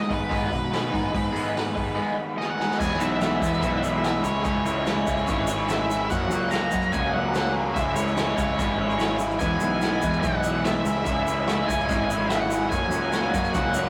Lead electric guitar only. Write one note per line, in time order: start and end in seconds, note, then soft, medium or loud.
0.00 0.12 D#5 loud
0.13 2.36 B4 medium
2.38 2.49 D#5 medium
2.50 2.79 F#5 medium
2.80 3.01 G#5 medium
2.99 3.60 E5 medium
3.62 4.24 E5 medium
4.24 4.43 C#5 medium
4.44 4.64 C#5 medium
4.65 5.68 C#5 medium
5.69 6.11 E5 medium
6.10 6.53 F#5 loud
6.51 6.94 A#5 loud
6.92 7.13 G#5 loud
7.13 7.52 F#5 loud
7.74 7.95 E5 medium
7.95 8.35 C#5 medium
8.36 9.16 C#5 medium
9.39 10.21 G#5 loud
10.21 10.38 G5 loud
10.38 10.65 F#5 loud
10.64 11.04 E5 medium
11.05 11.70 E5 medium
11.66 12.29 G#5 medium
12.29 12.40 E5 medium
12.40 12.70 F#5 loud
12.70 13.54 G#5 loud
13.54 13.89 F#5 medium